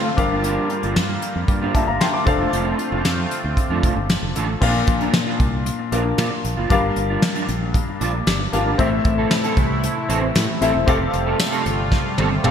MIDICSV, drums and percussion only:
0, 0, Header, 1, 2, 480
1, 0, Start_track
1, 0, Tempo, 521739
1, 407, Time_signature, 4, 2, 24, 8
1, 11507, End_track
2, 0, Start_track
2, 0, Title_t, "Drums"
2, 165, Note_on_c, 9, 36, 97
2, 166, Note_on_c, 9, 42, 73
2, 257, Note_off_c, 9, 36, 0
2, 258, Note_off_c, 9, 42, 0
2, 403, Note_on_c, 9, 42, 74
2, 495, Note_off_c, 9, 42, 0
2, 641, Note_on_c, 9, 42, 59
2, 733, Note_off_c, 9, 42, 0
2, 763, Note_on_c, 9, 42, 49
2, 855, Note_off_c, 9, 42, 0
2, 884, Note_on_c, 9, 42, 83
2, 885, Note_on_c, 9, 38, 101
2, 976, Note_off_c, 9, 42, 0
2, 977, Note_off_c, 9, 38, 0
2, 1124, Note_on_c, 9, 42, 69
2, 1216, Note_off_c, 9, 42, 0
2, 1364, Note_on_c, 9, 36, 89
2, 1367, Note_on_c, 9, 42, 76
2, 1456, Note_off_c, 9, 36, 0
2, 1459, Note_off_c, 9, 42, 0
2, 1607, Note_on_c, 9, 36, 86
2, 1609, Note_on_c, 9, 42, 78
2, 1699, Note_off_c, 9, 36, 0
2, 1701, Note_off_c, 9, 42, 0
2, 1847, Note_on_c, 9, 42, 87
2, 1850, Note_on_c, 9, 38, 94
2, 1939, Note_off_c, 9, 42, 0
2, 1942, Note_off_c, 9, 38, 0
2, 2086, Note_on_c, 9, 36, 96
2, 2086, Note_on_c, 9, 42, 73
2, 2178, Note_off_c, 9, 36, 0
2, 2178, Note_off_c, 9, 42, 0
2, 2327, Note_on_c, 9, 42, 74
2, 2419, Note_off_c, 9, 42, 0
2, 2565, Note_on_c, 9, 42, 58
2, 2657, Note_off_c, 9, 42, 0
2, 2805, Note_on_c, 9, 38, 101
2, 2805, Note_on_c, 9, 42, 82
2, 2897, Note_off_c, 9, 38, 0
2, 2897, Note_off_c, 9, 42, 0
2, 3047, Note_on_c, 9, 42, 66
2, 3139, Note_off_c, 9, 42, 0
2, 3285, Note_on_c, 9, 36, 83
2, 3289, Note_on_c, 9, 42, 85
2, 3377, Note_off_c, 9, 36, 0
2, 3381, Note_off_c, 9, 42, 0
2, 3527, Note_on_c, 9, 36, 87
2, 3529, Note_on_c, 9, 42, 80
2, 3619, Note_off_c, 9, 36, 0
2, 3621, Note_off_c, 9, 42, 0
2, 3767, Note_on_c, 9, 42, 91
2, 3770, Note_on_c, 9, 38, 97
2, 3859, Note_off_c, 9, 42, 0
2, 3862, Note_off_c, 9, 38, 0
2, 4009, Note_on_c, 9, 42, 77
2, 4101, Note_off_c, 9, 42, 0
2, 4247, Note_on_c, 9, 49, 86
2, 4248, Note_on_c, 9, 36, 94
2, 4339, Note_off_c, 9, 49, 0
2, 4340, Note_off_c, 9, 36, 0
2, 4482, Note_on_c, 9, 42, 61
2, 4487, Note_on_c, 9, 36, 103
2, 4574, Note_off_c, 9, 42, 0
2, 4579, Note_off_c, 9, 36, 0
2, 4605, Note_on_c, 9, 42, 52
2, 4697, Note_off_c, 9, 42, 0
2, 4724, Note_on_c, 9, 38, 107
2, 4724, Note_on_c, 9, 42, 82
2, 4816, Note_off_c, 9, 38, 0
2, 4816, Note_off_c, 9, 42, 0
2, 4967, Note_on_c, 9, 36, 91
2, 4967, Note_on_c, 9, 42, 69
2, 5059, Note_off_c, 9, 36, 0
2, 5059, Note_off_c, 9, 42, 0
2, 5208, Note_on_c, 9, 42, 88
2, 5300, Note_off_c, 9, 42, 0
2, 5449, Note_on_c, 9, 42, 82
2, 5541, Note_off_c, 9, 42, 0
2, 5685, Note_on_c, 9, 42, 95
2, 5688, Note_on_c, 9, 38, 102
2, 5777, Note_off_c, 9, 42, 0
2, 5780, Note_off_c, 9, 38, 0
2, 5929, Note_on_c, 9, 42, 82
2, 6021, Note_off_c, 9, 42, 0
2, 6167, Note_on_c, 9, 36, 95
2, 6167, Note_on_c, 9, 42, 85
2, 6259, Note_off_c, 9, 36, 0
2, 6259, Note_off_c, 9, 42, 0
2, 6404, Note_on_c, 9, 42, 62
2, 6496, Note_off_c, 9, 42, 0
2, 6645, Note_on_c, 9, 38, 109
2, 6645, Note_on_c, 9, 42, 88
2, 6737, Note_off_c, 9, 38, 0
2, 6737, Note_off_c, 9, 42, 0
2, 6767, Note_on_c, 9, 42, 56
2, 6859, Note_off_c, 9, 42, 0
2, 6886, Note_on_c, 9, 42, 70
2, 6978, Note_off_c, 9, 42, 0
2, 7124, Note_on_c, 9, 36, 96
2, 7128, Note_on_c, 9, 42, 90
2, 7216, Note_off_c, 9, 36, 0
2, 7220, Note_off_c, 9, 42, 0
2, 7369, Note_on_c, 9, 42, 81
2, 7461, Note_off_c, 9, 42, 0
2, 7607, Note_on_c, 9, 42, 93
2, 7610, Note_on_c, 9, 38, 104
2, 7699, Note_off_c, 9, 42, 0
2, 7702, Note_off_c, 9, 38, 0
2, 7848, Note_on_c, 9, 42, 78
2, 7940, Note_off_c, 9, 42, 0
2, 8087, Note_on_c, 9, 36, 97
2, 8087, Note_on_c, 9, 42, 85
2, 8179, Note_off_c, 9, 36, 0
2, 8179, Note_off_c, 9, 42, 0
2, 8323, Note_on_c, 9, 42, 61
2, 8326, Note_on_c, 9, 36, 101
2, 8415, Note_off_c, 9, 42, 0
2, 8418, Note_off_c, 9, 36, 0
2, 8563, Note_on_c, 9, 38, 112
2, 8563, Note_on_c, 9, 42, 87
2, 8655, Note_off_c, 9, 38, 0
2, 8655, Note_off_c, 9, 42, 0
2, 8683, Note_on_c, 9, 42, 60
2, 8775, Note_off_c, 9, 42, 0
2, 8803, Note_on_c, 9, 42, 70
2, 8804, Note_on_c, 9, 36, 96
2, 8895, Note_off_c, 9, 42, 0
2, 8896, Note_off_c, 9, 36, 0
2, 9048, Note_on_c, 9, 42, 90
2, 9140, Note_off_c, 9, 42, 0
2, 9288, Note_on_c, 9, 42, 85
2, 9380, Note_off_c, 9, 42, 0
2, 9525, Note_on_c, 9, 42, 103
2, 9528, Note_on_c, 9, 38, 101
2, 9617, Note_off_c, 9, 42, 0
2, 9620, Note_off_c, 9, 38, 0
2, 9767, Note_on_c, 9, 42, 79
2, 9859, Note_off_c, 9, 42, 0
2, 10007, Note_on_c, 9, 36, 95
2, 10007, Note_on_c, 9, 42, 85
2, 10099, Note_off_c, 9, 36, 0
2, 10099, Note_off_c, 9, 42, 0
2, 10244, Note_on_c, 9, 42, 67
2, 10336, Note_off_c, 9, 42, 0
2, 10484, Note_on_c, 9, 54, 61
2, 10485, Note_on_c, 9, 38, 115
2, 10485, Note_on_c, 9, 42, 91
2, 10576, Note_off_c, 9, 54, 0
2, 10577, Note_off_c, 9, 38, 0
2, 10577, Note_off_c, 9, 42, 0
2, 10605, Note_on_c, 9, 42, 56
2, 10697, Note_off_c, 9, 42, 0
2, 10725, Note_on_c, 9, 42, 74
2, 10817, Note_off_c, 9, 42, 0
2, 10964, Note_on_c, 9, 36, 93
2, 10964, Note_on_c, 9, 38, 57
2, 11056, Note_off_c, 9, 36, 0
2, 11056, Note_off_c, 9, 38, 0
2, 11205, Note_on_c, 9, 48, 71
2, 11297, Note_off_c, 9, 48, 0
2, 11445, Note_on_c, 9, 47, 88
2, 11507, Note_off_c, 9, 47, 0
2, 11507, End_track
0, 0, End_of_file